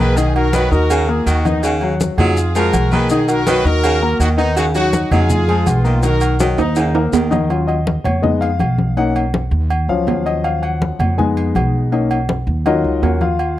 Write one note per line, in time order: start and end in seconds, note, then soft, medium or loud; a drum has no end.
0.00 0.66 B1 medium
0.00 0.30 D#3 medium
0.00 0.14 A#3 medium
0.00 0.15 G#4 medium
0.00 0.14 A#4 medium
0.00 0.17 B4 loud
0.00 0.14 A#5 medium
0.16 0.47 D#3 medium
0.16 0.47 D#4 medium
0.16 0.36 D#4 medium
0.16 0.35 G#4 loud
0.16 0.47 D#5 medium
0.16 low agogo medium
0.16 maracas medium
0.35 0.53 F#4 medium
0.35 0.52 A#4 loud
0.35 high conga soft
0.35 low agogo loud
0.53 0.73 D#3 medium
0.53 0.69 F#3 medium
0.53 0.69 F#4 medium
0.53 0.72 F#4 medium
0.53 0.72 B4 loud
0.53 0.69 F#5 medium
0.53 high conga loud
0.53 maracas medium
0.71 1.23 D#2 loud
0.71 1.02 D#4 medium
0.71 1.07 F#4 medium
0.71 1.06 A#4 loud
0.71 1.02 D#5 medium
0.71 1.02 D#6 medium
0.71 high conga soft
0.71 maracas soft
0.90 1.10 C#3 loud
0.90 high conga soft
0.90 low agogo loud
0.90 maracas medium
1.08 1.39 A#3 medium
1.08 1.28 F4 medium
1.08 1.27 G#4 medium
1.08 1.39 A#4 medium
1.08 1.39 A#5 medium
1.08 high conga soft
1.26 2.12 D#2 medium
1.26 1.46 D#3 medium
1.26 1.44 D#4 medium
1.26 1.44 F#4 medium
1.26 high conga soft
1.26 low agogo medium
1.26 maracas medium
1.45 1.75 D#3 medium
1.45 1.63 B3 medium
1.45 1.75 D#4 medium
1.45 1.62 D#4 medium
1.45 1.75 D#5 medium
1.45 high conga medium
1.45 low agogo medium
1.45 maracas soft
1.63 1.94 C#3 medium
1.63 1.72 D#4 medium
1.63 1.72 F#4 medium
1.63 low agogo loud
1.63 maracas medium
1.81 2.12 F#3 medium
1.81 2.12 F#4 medium
1.81 2.12 F#5 medium
1.81 high conga soft
1.81 low agogo medium
2.01 high conga loud
2.01 maracas medium
2.18 2.69 F2 loud
2.18 2.38 F#3 medium
2.18 2.49 D#4 medium
2.18 2.53 F4 medium
2.18 2.52 G#4 loud
2.18 2.49 D#5 medium
2.18 2.49 D#6 medium
2.18 high conga soft
2.18 low conga medium
2.18 low agogo loud
2.18 maracas soft
2.37 high conga soft
2.37 maracas medium
2.55 2.75 F3 medium
2.55 2.85 G#3 medium
2.55 2.90 F#4 medium
2.55 2.86 G#4 medium
2.55 2.90 A#4 loud
2.55 2.86 G#5 medium
2.55 high conga soft
2.55 low agogo medium
2.55 maracas medium
2.73 3.59 B1 medium
2.73 high conga medium
2.73 low agogo loud
2.73 maracas medium
2.91 3.23 D#3 medium
2.91 3.07 A#3 medium
2.91 3.09 G#4 medium
2.91 3.07 A#4 medium
2.91 3.10 B4 loud
2.91 3.07 A#5 medium
2.91 high conga medium
2.91 maracas soft
3.09 3.41 D#3 medium
3.09 3.41 D#4 medium
3.09 3.28 D#4 medium
3.09 3.27 G#4 loud
3.09 3.41 D#5 medium
3.09 high conga soft
3.09 low agogo medium
3.09 maracas medium
3.28 3.47 F#4 medium
3.28 3.47 A#4 loud
3.28 high conga soft
3.28 low agogo loud
3.28 maracas medium
3.47 3.67 D#3 medium
3.47 3.62 F#3 medium
3.47 3.62 F#4 medium
3.47 3.65 F#4 medium
3.47 3.65 B4 loud
3.47 3.62 F#5 medium
3.47 high conga loud
3.47 maracas medium
3.65 4.16 D#2 loud
3.65 3.95 D#4 medium
3.65 4.19 F#4 medium
3.65 4.20 A#4 loud
3.65 3.95 D#5 medium
3.65 3.96 D#6 medium
3.65 high conga soft
3.65 maracas soft
3.84 4.03 C#3 loud
3.84 high conga soft
3.84 low agogo loud
3.84 maracas medium
4.02 4.32 A#3 medium
4.02 4.32 A#4 medium
4.02 4.32 A#5 medium
4.02 high conga soft
4.20 5.06 D#2 medium
4.20 4.40 D#3 medium
4.20 4.29 D#4 medium
4.20 4.29 F#4 loud
4.20 high conga soft
4.20 low agogo medium
4.20 maracas medium
4.37 4.68 D#3 loud
4.37 4.55 B3 medium
4.37 4.55 D#4 loud
4.37 4.68 D#4 medium
4.37 4.68 D#5 loud
4.37 low agogo medium
4.37 maracas soft
4.57 4.87 C#3 medium
4.57 4.65 D#4 medium
4.57 4.65 F#4 loud
4.57 high conga soft
4.57 low agogo medium
4.57 maracas medium
4.75 5.05 F#3 medium
4.75 5.09 D#4 medium
4.75 5.09 F#4 loud
4.75 5.05 F#4 medium
4.75 5.06 F#5 medium
4.75 high conga soft
4.75 low agogo medium
4.75 maracas medium
4.93 high conga loud
4.93 maracas medium
5.11 5.63 F2 loud
5.11 5.31 F#3 medium
5.11 5.42 D#4 medium
5.11 5.67 F4 medium
5.11 5.67 G#4 loud
5.11 5.42 D#5 medium
5.11 5.42 D#6 medium
5.11 high conga soft
5.11 low conga medium
5.11 low agogo loud
5.11 maracas soft
5.30 high conga soft
5.30 low conga medium
5.30 maracas medium
5.48 5.68 F3 medium
5.48 5.78 G#3 medium
5.48 5.78 G#4 medium
5.48 5.79 G#5 medium
5.48 high conga soft
5.48 low agogo medium
5.66 6.52 B1 loud
5.66 6.04 B3 medium
5.66 6.04 F4 medium
5.66 high conga medium
5.66 low agogo loud
5.66 maracas medium
5.84 6.15 D#3 medium
5.84 5.99 A#3 medium
5.84 6.00 A#4 medium
5.84 6.00 A#5 medium
5.84 maracas soft
6.03 6.33 D#3 medium
6.03 6.33 D#4 medium
6.03 6.38 F#4 medium
6.03 6.38 A#4 loud
6.03 6.33 D#5 medium
6.03 high conga soft
6.03 low agogo medium
6.03 maracas medium
6.21 high conga soft
6.21 low agogo loud
6.21 maracas medium
6.40 6.60 D#3 loud
6.40 6.55 F#3 medium
6.40 6.55 F#4 medium
6.40 6.55 F#5 medium
6.40 high conga loud
6.40 maracas medium
6.58 7.09 D#2 loud
6.58 7.10 A#3 medium
6.58 6.88 D#4 medium
6.58 7.10 D#4 medium
6.58 6.88 D#5 medium
6.58 6.89 D#6 medium
6.58 high conga soft
6.58 high timbale loud
6.58 maracas soft
6.76 6.96 C#3 medium
6.76 high conga soft
6.76 high timbale medium
6.76 low agogo loud
6.76 maracas medium
6.94 7.25 A#3 medium
6.94 7.25 A#4 medium
6.94 7.25 A#5 medium
6.94 high conga soft
6.94 high timbale loud
7.12 7.99 D#2 medium
7.12 7.33 D#3 medium
7.12 high conga soft
7.12 low timbale loud
7.12 low agogo loud
7.12 maracas medium
7.30 7.46 D#3 medium
7.30 7.46 D#4 medium
7.30 7.46 D#5 medium
7.30 high conga medium
7.30 low timbale medium
7.30 low agogo medium
7.30 maracas soft
7.49 7.74 F#3 medium
7.49 7.74 C#4 medium
7.49 7.75 F4 medium
7.49 high conga soft
7.49 low agogo medium
7.67 8.02 D#5 medium
7.67 high conga soft
7.67 low agogo medium
7.87 high conga loud
8.04 8.56 F2 medium
8.04 8.23 C#5 medium
8.04 high conga soft
8.04 low conga medium
8.04 low agogo loud
8.22 8.47 G#3 medium
8.22 8.48 B3 medium
8.22 8.48 D#4 medium
8.22 8.41 D#5 medium
8.22 high conga soft
8.22 low conga medium
8.41 8.93 F5 medium
8.41 high conga soft
8.41 low agogo medium
8.59 9.46 B1 medium
8.59 high conga medium
8.59 low agogo loud
8.78 high conga medium
8.97 9.21 A#3 medium
8.97 9.22 C#4 medium
8.97 9.22 D#4 medium
8.97 9.15 F#5 medium
8.97 high conga soft
8.97 low agogo medium
9.15 high conga soft
9.15 low agogo loud
9.34 high conga loud
9.51 9.86 D#2 loud
9.51 high conga soft
9.70 high conga soft
9.70 low agogo loud
9.88 10.06 C#2 medium
9.88 11.15 F3 medium
9.88 11.14 F#3 medium
9.88 11.14 C#4 medium
9.88 10.24 F5 medium
9.88 high conga soft
10.07 10.94 D#2 medium
10.07 high conga soft
10.07 low timbale medium
10.07 low agogo medium
10.26 10.44 D#5 medium
10.26 low agogo medium
10.44 10.62 F5 medium
10.44 high conga soft
10.44 low agogo medium
10.62 11.14 F#5 medium
10.62 high conga soft
10.62 low agogo medium
10.82 high conga loud
10.99 11.51 F2 loud
10.99 high conga soft
10.99 low conga medium
10.99 low agogo loud
11.18 11.88 G#3 medium
11.18 11.88 B3 medium
11.18 11.89 D#4 medium
11.18 11.29 G#5 medium
11.18 high conga soft
11.18 low conga medium
11.37 high conga soft
11.37 low agogo medium
11.55 12.41 B1 medium
11.55 high conga medium
11.55 low agogo loud
11.92 12.16 A#3 medium
11.92 12.17 C#4 medium
11.92 12.17 D#4 medium
11.92 high conga soft
11.92 low agogo medium
12.11 high conga soft
12.11 low agogo loud
12.29 high conga loud
12.47 12.81 D#2 loud
12.47 high conga soft
12.65 13.18 F#3 medium
12.65 13.02 C#4 soft
12.65 13.01 D#4 medium
12.65 13.19 F4 medium
12.65 13.01 F#4 medium
12.65 13.00 A#4 medium
12.65 13.00 D#5 medium
12.65 high conga soft
12.65 low agogo loud
12.84 13.01 C#2 medium
12.84 high conga soft
13.02 13.59 D#2 medium
13.02 13.21 C#4 medium
13.02 13.21 F#4 medium
13.02 13.21 A#4 medium
13.02 13.21 C#5 medium
13.02 high conga soft
13.02 low timbale medium
13.02 low agogo medium
13.21 13.59 F4 medium
13.21 13.59 F5 medium
13.21 high conga medium
13.21 low agogo medium
13.39 high conga soft
13.39 low agogo medium